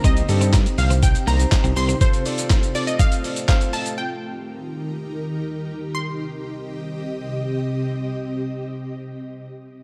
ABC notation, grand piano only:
X:1
M:4/4
L:1/8
Q:1/4=122
K:Cdor
V:1 name="Grand piano"
[CEGc] [CEGA] [CE] [CEGc] [CEGc] [CEGc] [CEGc] [CEGc] | [CFAc] [CFAd] [CFAc] [CFAd] [FAc] [CFAd] [CFAc] [CFAe] | z8 | z8 |
z8 |]